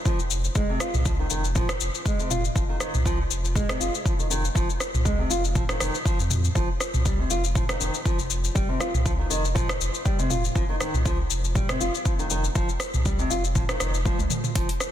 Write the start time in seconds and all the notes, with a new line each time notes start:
0.05 F3, kick, shaker
0.19 F1, shaker
0.31 shaker
0.44 shaker
0.55 F1 G#3, kick, shaker
0.69 C3
0.80 F4, cross-stick, shaker
0.94 C2, mid tom, shaker
1.05 F3, kick, shaker
1.19 D#3
1.30 F1 D#3, shaker
1.44 shaker
1.55 F3, kick, mid tom, shaker
1.69 cross-stick, shaker
1.81 F1, shaker
1.94 shaker
2.05 G#3, kick, shaker
2.19 F1 C3, shaker
2.31 F4, mid tom, shaker
2.45 shaker
2.55 F1 F3, kick, shaker
2.69 D#3
2.80 D#3, cross-stick, shaker
2.94 C2, mid tom, shaker
3.05 F3, kick, shaker
3.31 F1, shaker
3.45 shaker
3.55 G#3, kick, mid tom, shaker
3.69 C3, cross-stick, shaker
3.80 F1 F4, shaker
3.95 shaker
4.05 F3, kick, shaker
4.19 F1 D#3, shaker
4.30 D#3, shaker
4.45 shaker
4.55 F1 F3, kick, shaker
4.70 shaker
4.80 cross-stick, shaker
4.94 C2, mid tom, shaker
5.05 G#3, kick, shaker
5.19 C3
5.30 F1 F4, shaker
5.44 shaker
5.55 F3, kick, mid tom, shaker
5.69 D#3, cross-stick, shaker
5.80 F1 D#3, cross-stick, shaker
5.95 shaker
6.05 F3, kick, shaker
6.19 F2, shaker
6.30 mid tom, shaker
6.44 shaker
6.55 F1 F3, kick, shaker
6.81 cross-stick, shaker
6.94 C2, mid tom, shaker
7.05 G3, kick, shaker
7.19 C3
7.30 F1 F4, shaker
7.44 shaker
7.55 F3, kick, mid tom, shaker
7.69 D#3, cross-stick, shaker
7.80 F1 D#3, shaker
7.94 shaker
8.05 F3, kick, shaker
8.19 F1, shaker
8.30 shaker
8.44 shaker
8.55 F1 G3, kick, shaker
8.69 C3
8.80 F4, cross-stick, shaker
8.94 C2, mid tom, shaker
9.05 F3, kick, shaker
9.19 D#3
9.30 F1 D#3, shaker
9.45 shaker
9.55 F3, kick, mid tom, shaker
9.69 cross-stick, shaker
9.80 F1, shaker
9.94 shaker
10.05 G3, kick, shaker
10.19 F1 C3, shaker
10.30 F4, mid tom, shaker
10.44 shaker
10.55 F1 F3, kick, shaker
10.69 D#3
10.80 D#3, cross-stick, shaker
10.94 C2, mid tom, shaker
11.05 F3, kick, shaker
11.30 F1, shaker
11.44 shaker
11.55 G3, kick, mid tom, shaker
11.69 C3, cross-stick, shaker
11.81 F1 F4, shaker
11.94 shaker
12.05 F3, kick, shaker
12.19 F1 D#3, shaker
12.30 D#3, shaker
12.44 shaker
12.55 F1 F3, kick, shaker
12.69 shaker
12.80 cross-stick, shaker
12.94 C2, mid tom, shaker
13.05 G3, kick, shaker
13.19 C3, shaker
13.30 F1 F4, shaker
13.44 shaker
13.55 F3, kick, mid tom, shaker
13.69 D#3, cross-stick, shaker
13.80 F1 D#3, cross-stick, shaker
13.94 shaker
14.05 F3, kick, high tom, shaker
14.19 C2, high tom, shaker
14.30 mid tom, shaker
14.44 mid tom, shaker
14.55 F1 F3, kick, closed hi-hat, shaker
14.69 closed hi-hat
14.80 cross-stick, shaker